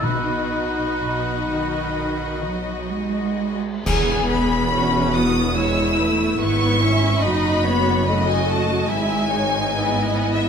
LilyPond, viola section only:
\new Staff \with { instrumentName = "Viola section" } { \time 4/4 \key e \major \tempo 4 = 71 << { dis'2.~ dis'8 r8 | gis'4 fis'4 e'4 e'4 | fis'4 fis'4 e'8 dis'8 e'4 | } \\ { r1 | b4 cis'8 b8 gis8 a8 b8 cis'8 | dis'8 b8 a4 gis4 b8 b8 | } >> }